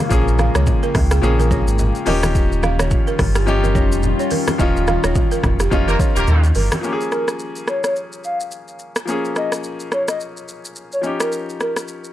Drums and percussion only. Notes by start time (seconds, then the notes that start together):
0.11 kick, shaker
0.28 shaker
0.39 cross-stick, high conga, shaker
0.55 cross-stick, high conga, shaker
0.66 kick, low conga, shaker
0.83 shaker
0.95 kick, cross-stick, open hi-hat, high conga, low conga, shaker
1.11 cross-stick, shaker
1.23 shaker
1.39 high conga, shaker
1.51 kick, high conga, shaker
1.68 shaker
1.79 low conga, shaker
1.95 shaker
2.06 open hi-hat, high conga, shaker
2.23 cross-stick, high conga, shaker
2.35 kick, shaker
2.52 shaker
2.63 cross-stick, high conga, shaker
2.79 cross-stick, high conga, shaker
2.91 kick, low conga, shaker
3.07 shaker
3.19 kick, cross-stick, open hi-hat, high conga, low conga, shaker
3.35 cross-stick, shaker
3.47 shaker
3.64 high conga, shaker
3.75 kick, high conga, shaker
3.92 shaker
4.03 low conga, shaker
4.20 shaker
4.31 open hi-hat, high conga, shaker
4.47 cross-stick, high conga, shaker
4.59 kick, shaker
4.77 shaker
4.87 cross-stick, high conga, shaker
5.04 cross-stick, high conga, shaker
5.15 kick, low conga, shaker
5.32 shaker
5.43 kick, cross-stick, high conga, low conga, shaker
5.60 cross-stick, shaker
5.72 kick, shaker
5.88 high conga, shaker
5.99 kick, high conga, shaker
6.16 shaker
6.27 low conga, shaker
6.44 shaker
6.55 open hi-hat, high conga, shaker
6.72 cross-stick, high conga, shaker
6.84 shaker
7.01 shaker
7.12 cross-stick, shaker
7.28 cross-stick, shaker
7.39 shaker
7.56 shaker
7.68 cross-stick, shaker
7.84 cross-stick, shaker
7.96 shaker
8.13 shaker
8.24 shaker
8.40 shaker
8.51 shaker
8.68 shaker
8.79 shaker
8.96 cross-stick, shaker
9.08 shaker
9.25 shaker
9.36 cross-stick, shaker
9.52 cross-stick, shaker
9.64 shaker
9.80 shaker
9.92 cross-stick, shaker
10.08 cross-stick, shaker
10.20 shaker
10.37 shaker
10.48 shaker
10.65 shaker
10.76 shaker
10.92 shaker
11.03 shaker
11.20 cross-stick, shaker
11.32 shaker
11.49 shaker
11.60 cross-stick, shaker
11.76 cross-stick, shaker
11.88 shaker
12.04 shaker